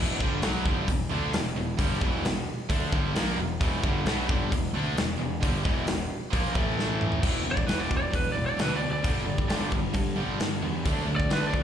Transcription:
Already playing: picked electric bass E1
0.00 overdriven electric guitar E2 B2 E3
0.20 picked electric bass G1, overdriven electric guitar G2 D3 G3, kick
0.42 picked electric bass B1, overdriven electric guitar B2 F#3 B3, snare, open hi-hat
0.65 picked electric bass G1, overdriven electric guitar G2 D3 G3, kick
0.88 picked electric bass E1, overdriven electric guitar E2 B2, kick, open hi-hat
1.11 picked electric bass D2, overdriven electric guitar D3 A3 D4
1.32 picked electric bass E1, overdriven electric guitar E2 B2, snare, open hi-hat
1.55 picked electric bass E1, overdriven electric guitar E2 B2
1.79 picked electric bass G1, overdriven electric guitar G2 D3 G3, kick, open hi-hat
2.01 picked electric bass E1, overdriven electric guitar E2 B2 E3, kick
2.24 picked electric bass E1, overdriven electric guitar E2 B2, snare, open hi-hat
2.70 picked electric bass D2, overdriven electric guitar D3 A3 D4, kick, open hi-hat
2.92 picked electric bass G1, overdriven electric guitar G2 D3 G3, kick
3.15 picked electric bass A#1, overdriven electric guitar A#2 F3 A#3, snare, open hi-hat
3.36 picked electric bass E1, overdriven electric guitar E2 B2
3.60 picked electric bass E1, overdriven electric guitar E2 B2 E3, kick, open hi-hat
3.83 picked electric bass G1, overdriven electric guitar G2 D3 G3, kick
4.05 picked electric bass B1, overdriven electric guitar B2 F#3 B3, snare, open hi-hat
4.29 picked electric bass G1, overdriven electric guitar G2 D3 G3, kick
4.52 picked electric bass E1, overdriven electric guitar E2 B2, kick, open hi-hat
4.73 picked electric bass D2, overdriven electric guitar D3
4.77 overdriven electric guitar A3 D4
4.97 picked electric bass E1, overdriven electric guitar E2 B2, snare, open hi-hat
5.18 picked electric bass E1, distorted electric guitar E2 B2
5.22 overdriven electric guitar E2 B2
5.43 picked electric bass G1, overdriven electric guitar G2 D3 G3, kick, open hi-hat
5.65 picked electric bass E1, overdriven electric guitar E2 B2 E3, kick
5.86 picked electric bass E1, overdriven electric guitar E2 B2, snare, open hi-hat
6.33 picked electric bass A#1, overdriven electric guitar A#2 F3 A#3, kick, open hi-hat
6.55 picked electric bass A1, overdriven electric guitar A2 E3 A3, kick
6.79 snare
7.01 mid tom
7.12 floor tom
7.23 picked electric bass E1, overdriven electric guitar E2 B2 E3, kick, crash
7.44 picked electric bass E1, overdriven electric guitar E2 B2
7.51 lead electric guitar D5
7.57 kick
7.67 picked electric bass E1, overdriven electric guitar E2 B2 E3, lead electric guitar B4, snare, open hi-hat
7.80 lead electric guitar D5
7.91 overdriven electric guitar E2 B2, kick
7.97 lead electric guitar D5
8.11 picked electric bass E1, distorted electric guitar E2, kick, open hi-hat
8.15 overdriven electric guitar E2 B2, lead electric guitar B4
8.32 picked electric bass E1, overdriven electric guitar E2, lead electric guitar D5
8.37 overdriven electric guitar B2
8.46 lead electric guitar D5
8.59 picked electric bass D2, overdriven electric guitar E2 B2 E3, lead electric guitar B4, snare, open hi-hat
8.76 lead electric guitar D5
8.81 overdriven electric guitar E2 B2, distorted electric guitar E3
8.91 lead electric guitar D5
9.03 picked electric bass G1, overdriven electric guitar G2 D3 G3, kick, open hi-hat
9.08 distorted electric guitar G3
9.25 picked electric bass G1, overdriven electric guitar G2 D3
9.38 kick
9.48 picked electric bass G1, overdriven electric guitar G2 D3 G3, snare, open hi-hat
9.70 picked electric bass G1, overdriven electric guitar G2 D3, kick
9.94 picked electric bass G2, overdriven electric guitar G2 D3, kick, open hi-hat
10.16 picked electric bass G1, overdriven electric guitar G2 D3 G3
10.39 picked electric bass G1, overdriven electric guitar G2 D3, snare, open hi-hat
10.62 picked electric bass E2, overdriven electric guitar G2 D3, distorted electric guitar G3
10.85 picked electric bass D2, overdriven electric guitar D3 A3 D4, kick, open hi-hat
11.07 picked electric bass D2, overdriven electric guitar D3 A3
11.16 lead electric guitar D5, kick
11.29 picked electric bass D2, overdriven electric guitar D3 A3 D4, lead electric guitar B4, snare, open hi-hat
11.47 lead electric guitar D5
11.54 overdriven electric guitar D3 A3, kick

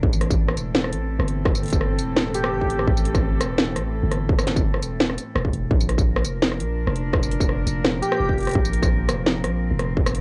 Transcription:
Already playing: cello section D4
0.03 808-style bass A1, cello section A2, kick
0.09 cello section E3, tambourine
0.21 cross-stick, closed hi-hat
0.30 kick, tambourine
0.41 cello section A4
0.48 cello section C4, cross-stick
0.57 808-style bass E1, closed hi-hat, tambourine
0.75 snare
0.84 cross-stick
0.92 808-style bass A1, closed hi-hat
1.19 808-style bass G1, cross-stick
1.28 closed hi-hat
1.45 kick, cross-stick
1.55 tambourine
1.63 closed hi-hat
1.66 closed hi-hat
1.68 closed hi-hat
1.70 kick, closed hi-hat, tambourine
1.81 cross-stick
1.99 808-style bass E1, closed hi-hat, tambourine
2.17 cross-stick, snare
2.34 digital synth lead G4, closed hi-hat, tambourine
2.44 cross-stick
2.52 808-style bass G1
2.61 kick
2.70 closed hi-hat
2.79 cross-stick
2.87 808-style bass A1, kick
2.97 tambourine
3.05 closed hi-hat
3.15 kick, cross-stick, tambourine
3.41 808-style bass E1, cross-stick, closed hi-hat, tambourine
3.58 snare
3.76 808-style bass A1, cross-stick, closed hi-hat
4.03 808-style bass G1
4.11 cross-stick, closed hi-hat
4.29 kick
4.38 cross-stick, tambourine
4.47 snare, closed hi-hat
4.56 kick, tambourine
4.74 cross-stick
4.82 808-style bass E1, closed hi-hat, tambourine
5.00 snare
5.10 cross-stick
5.18 closed hi-hat, tambourine
5.35 808-style bass E1, cross-stick
5.45 kick
5.53 808-style bass E1, closed hi-hat
5.71 808-style bass A#1, cello section A#2, kick
5.81 tambourine
5.89 cello section F3 A#4, cross-stick, closed hi-hat
5.98 kick, tambourine
6.16 cello section D4, cross-stick
6.24 808-style bass F1, closed hi-hat, tambourine
6.42 snare
6.52 cross-stick
6.60 808-style bass A#1, closed hi-hat
6.87 808-style bass F1, cross-stick
6.96 closed hi-hat
7.13 kick, cross-stick
7.23 tambourine
7.31 closed hi-hat
7.40 kick, tambourine
7.49 cross-stick
7.67 808-style bass F1, closed hi-hat, tambourine
7.85 cross-stick, snare
8.02 digital synth lead G4, closed hi-hat, tambourine
8.12 cross-stick
8.20 808-style bass F1
8.29 kick
8.38 closed hi-hat
8.40 closed hi-hat
8.43 closed hi-hat
8.45 cross-stick, closed hi-hat
8.47 closed hi-hat
8.49 closed hi-hat
8.51 closed hi-hat
8.53 808-style bass A#1, cello section C4, kick, closed hi-hat
8.65 tambourine
8.73 closed hi-hat
8.82 kick, cross-stick, tambourine
9.08 808-style bass F1, cross-stick, closed hi-hat, tambourine
9.26 snare
9.44 808-style bass A#1, cross-stick, closed hi-hat
9.71 808-style bass F1
9.79 cross-stick, closed hi-hat
9.97 kick
10.06 cross-stick, closed hi-hat, tambourine
10.15 closed hi-hat

